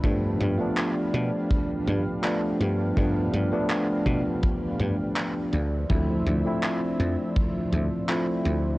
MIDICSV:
0, 0, Header, 1, 5, 480
1, 0, Start_track
1, 0, Tempo, 731707
1, 27, Time_signature, 4, 2, 24, 8
1, 5760, End_track
2, 0, Start_track
2, 0, Title_t, "Analog synth pad"
2, 0, Program_c, 0, 89
2, 0, Note_on_c, 0, 62, 78
2, 0, Note_on_c, 0, 71, 71
2, 21, Note_on_c, 0, 67, 72
2, 22, Note_on_c, 0, 77, 90
2, 3598, Note_off_c, 0, 67, 0
2, 3598, Note_off_c, 0, 77, 0
2, 3601, Note_off_c, 0, 71, 0
2, 3629, Note_on_c, 0, 53, 72
2, 3629, Note_on_c, 0, 72, 73
2, 3632, Note_on_c, 0, 76, 87
2, 5530, Note_off_c, 0, 76, 0
2, 5545, Note_on_c, 0, 74, 91
2, 5760, Note_off_c, 0, 53, 0
2, 5760, Note_off_c, 0, 62, 0
2, 5760, Note_off_c, 0, 72, 0
2, 5760, Note_off_c, 0, 74, 0
2, 5760, End_track
3, 0, Start_track
3, 0, Title_t, "Tine electric piano"
3, 0, Program_c, 1, 4
3, 0, Control_c, 1, 64, 127
3, 21, Note_on_c, 1, 53, 81
3, 24, Note_on_c, 1, 57, 74
3, 27, Note_on_c, 1, 59, 72
3, 30, Note_on_c, 1, 62, 89
3, 36, Control_c, 1, 64, 0
3, 141, Control_c, 1, 64, 127
3, 358, Note_off_c, 1, 53, 0
3, 360, Note_off_c, 1, 57, 0
3, 361, Note_off_c, 1, 59, 0
3, 363, Note_off_c, 1, 62, 0
3, 378, Note_on_c, 1, 53, 77
3, 385, Note_on_c, 1, 57, 70
3, 392, Note_on_c, 1, 59, 70
3, 398, Note_on_c, 1, 62, 84
3, 1433, Note_off_c, 1, 53, 0
3, 1436, Note_off_c, 1, 57, 0
3, 1440, Note_off_c, 1, 59, 0
3, 1443, Note_off_c, 1, 62, 0
3, 1459, Note_on_c, 1, 53, 84
3, 1463, Note_on_c, 1, 57, 75
3, 1466, Note_on_c, 1, 59, 79
3, 1469, Note_on_c, 1, 62, 90
3, 1915, Note_off_c, 1, 53, 0
3, 1917, Note_off_c, 1, 57, 0
3, 1919, Note_off_c, 1, 59, 0
3, 1920, Note_off_c, 1, 62, 0
3, 1939, Note_on_c, 1, 53, 71
3, 1942, Note_on_c, 1, 57, 64
3, 1945, Note_on_c, 1, 59, 66
3, 1949, Note_on_c, 1, 62, 77
3, 2277, Note_off_c, 1, 53, 0
3, 2279, Note_off_c, 1, 57, 0
3, 2280, Note_off_c, 1, 59, 0
3, 2282, Note_off_c, 1, 62, 0
3, 2307, Note_on_c, 1, 53, 90
3, 2310, Note_on_c, 1, 57, 82
3, 2313, Note_on_c, 1, 59, 81
3, 2317, Note_on_c, 1, 62, 94
3, 2479, Note_off_c, 1, 53, 0
3, 2480, Note_off_c, 1, 57, 0
3, 2482, Note_off_c, 1, 59, 0
3, 2484, Note_off_c, 1, 62, 0
3, 3637, Control_c, 1, 64, 0
3, 3758, Control_c, 1, 64, 127
3, 3863, Note_on_c, 1, 53, 81
3, 3868, Note_on_c, 1, 57, 76
3, 3871, Note_on_c, 1, 60, 75
3, 3874, Note_on_c, 1, 64, 93
3, 4200, Note_off_c, 1, 53, 0
3, 4202, Note_off_c, 1, 57, 0
3, 4204, Note_off_c, 1, 60, 0
3, 4205, Note_off_c, 1, 64, 0
3, 4224, Note_on_c, 1, 53, 77
3, 4229, Note_on_c, 1, 57, 73
3, 4237, Note_on_c, 1, 60, 70
3, 4243, Note_on_c, 1, 64, 86
3, 5275, Note_off_c, 1, 53, 0
3, 5278, Note_off_c, 1, 57, 0
3, 5282, Note_off_c, 1, 60, 0
3, 5285, Note_off_c, 1, 64, 0
3, 5301, Note_on_c, 1, 53, 86
3, 5304, Note_on_c, 1, 57, 77
3, 5307, Note_on_c, 1, 60, 78
3, 5310, Note_on_c, 1, 64, 93
3, 5756, Note_off_c, 1, 53, 0
3, 5757, Note_off_c, 1, 57, 0
3, 5759, Note_off_c, 1, 60, 0
3, 5760, Note_off_c, 1, 64, 0
3, 5760, End_track
4, 0, Start_track
4, 0, Title_t, "Slap bass"
4, 0, Program_c, 2, 36
4, 24, Note_on_c, 2, 43, 92
4, 229, Note_off_c, 2, 43, 0
4, 267, Note_on_c, 2, 43, 89
4, 371, Note_off_c, 2, 43, 0
4, 747, Note_on_c, 2, 47, 99
4, 851, Note_off_c, 2, 47, 0
4, 1229, Note_on_c, 2, 43, 100
4, 1332, Note_off_c, 2, 43, 0
4, 1709, Note_on_c, 2, 43, 91
4, 1911, Note_off_c, 2, 43, 0
4, 1950, Note_on_c, 2, 43, 95
4, 2152, Note_off_c, 2, 43, 0
4, 2189, Note_on_c, 2, 43, 86
4, 2292, Note_off_c, 2, 43, 0
4, 2666, Note_on_c, 2, 47, 96
4, 2771, Note_off_c, 2, 47, 0
4, 3150, Note_on_c, 2, 43, 100
4, 3253, Note_off_c, 2, 43, 0
4, 3630, Note_on_c, 2, 38, 93
4, 3832, Note_off_c, 2, 38, 0
4, 3870, Note_on_c, 2, 38, 96
4, 4072, Note_off_c, 2, 38, 0
4, 4108, Note_on_c, 2, 38, 89
4, 4212, Note_off_c, 2, 38, 0
4, 4588, Note_on_c, 2, 41, 102
4, 4692, Note_off_c, 2, 41, 0
4, 5069, Note_on_c, 2, 38, 100
4, 5172, Note_off_c, 2, 38, 0
4, 5547, Note_on_c, 2, 38, 92
4, 5751, Note_off_c, 2, 38, 0
4, 5760, End_track
5, 0, Start_track
5, 0, Title_t, "Drums"
5, 24, Note_on_c, 9, 36, 104
5, 25, Note_on_c, 9, 42, 75
5, 89, Note_off_c, 9, 36, 0
5, 91, Note_off_c, 9, 42, 0
5, 266, Note_on_c, 9, 42, 63
5, 332, Note_off_c, 9, 42, 0
5, 507, Note_on_c, 9, 39, 118
5, 507, Note_on_c, 9, 42, 74
5, 572, Note_off_c, 9, 39, 0
5, 572, Note_off_c, 9, 42, 0
5, 747, Note_on_c, 9, 42, 63
5, 813, Note_off_c, 9, 42, 0
5, 987, Note_on_c, 9, 36, 116
5, 988, Note_on_c, 9, 42, 74
5, 1053, Note_off_c, 9, 36, 0
5, 1053, Note_off_c, 9, 42, 0
5, 1228, Note_on_c, 9, 42, 63
5, 1294, Note_off_c, 9, 42, 0
5, 1469, Note_on_c, 9, 39, 114
5, 1469, Note_on_c, 9, 42, 76
5, 1534, Note_off_c, 9, 39, 0
5, 1534, Note_off_c, 9, 42, 0
5, 1710, Note_on_c, 9, 42, 62
5, 1775, Note_off_c, 9, 42, 0
5, 1948, Note_on_c, 9, 36, 107
5, 1948, Note_on_c, 9, 42, 75
5, 2013, Note_off_c, 9, 36, 0
5, 2014, Note_off_c, 9, 42, 0
5, 2189, Note_on_c, 9, 42, 61
5, 2255, Note_off_c, 9, 42, 0
5, 2428, Note_on_c, 9, 39, 112
5, 2428, Note_on_c, 9, 42, 74
5, 2493, Note_off_c, 9, 39, 0
5, 2493, Note_off_c, 9, 42, 0
5, 2665, Note_on_c, 9, 36, 57
5, 2666, Note_on_c, 9, 42, 64
5, 2730, Note_off_c, 9, 36, 0
5, 2732, Note_off_c, 9, 42, 0
5, 2907, Note_on_c, 9, 42, 73
5, 2910, Note_on_c, 9, 36, 115
5, 2973, Note_off_c, 9, 42, 0
5, 2975, Note_off_c, 9, 36, 0
5, 3147, Note_on_c, 9, 42, 62
5, 3212, Note_off_c, 9, 42, 0
5, 3389, Note_on_c, 9, 39, 111
5, 3389, Note_on_c, 9, 42, 74
5, 3454, Note_off_c, 9, 39, 0
5, 3454, Note_off_c, 9, 42, 0
5, 3627, Note_on_c, 9, 42, 62
5, 3692, Note_off_c, 9, 42, 0
5, 3867, Note_on_c, 9, 42, 76
5, 3869, Note_on_c, 9, 36, 110
5, 3933, Note_off_c, 9, 42, 0
5, 3934, Note_off_c, 9, 36, 0
5, 4108, Note_on_c, 9, 42, 63
5, 4174, Note_off_c, 9, 42, 0
5, 4348, Note_on_c, 9, 39, 107
5, 4348, Note_on_c, 9, 42, 77
5, 4414, Note_off_c, 9, 39, 0
5, 4414, Note_off_c, 9, 42, 0
5, 4590, Note_on_c, 9, 42, 63
5, 4655, Note_off_c, 9, 42, 0
5, 4828, Note_on_c, 9, 42, 75
5, 4829, Note_on_c, 9, 36, 108
5, 4893, Note_off_c, 9, 42, 0
5, 4895, Note_off_c, 9, 36, 0
5, 5068, Note_on_c, 9, 42, 65
5, 5133, Note_off_c, 9, 42, 0
5, 5308, Note_on_c, 9, 39, 111
5, 5308, Note_on_c, 9, 42, 76
5, 5374, Note_off_c, 9, 39, 0
5, 5374, Note_off_c, 9, 42, 0
5, 5547, Note_on_c, 9, 42, 63
5, 5612, Note_off_c, 9, 42, 0
5, 5760, End_track
0, 0, End_of_file